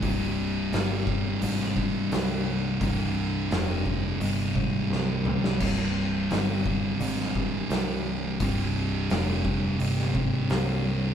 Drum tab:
CC |----------------|----------------|x---------------|----------------|
HH |o---o---o---o---|o---o---o-------|----o---o---o---|o---o---o---o---|
SD |----o----o--o---|----o-------o--o|----o----o--o---|----o----o--o---|
T2 |----------------|--------------o-|----------------|----------------|
BD |o-----o---o-----|o-----o---o-----|o-----o---o-----|o-----o---o-----|